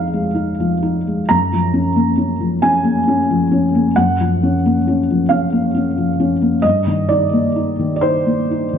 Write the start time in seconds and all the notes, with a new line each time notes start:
Already playing: F2 F3 G#3 D#4 D#5 F5
0.13 G#3
0.35 D#4
0.60 F3
0.82 D#4
1.07 G#3
1.29 F#2 A#5
1.53 F3
1.74 C#4
1.96 A#3
2.18 C#4
2.40 F3
2.62 C#4 G#5
2.84 A#3
3.08 C#4
3.31 F3
3.52 C#4
3.75 A#3
3.96 F#2 F#5
4.21 F3
4.43 C#4
4.66 A#3
4.88 C#4
5.10 F3
5.29 C#4 F5
5.52 A#3
5.75 C#4
5.98 F3
6.20 C#4
6.42 A#3
6.62 G2 D#5
6.87 D#3
7.09 D#4 D5
7.33 A#3
7.56 D#4
7.79 D#3
7.96 D5
8.01 D#4 C5
8.26 A#3
8.51 D#4
8.73 D#3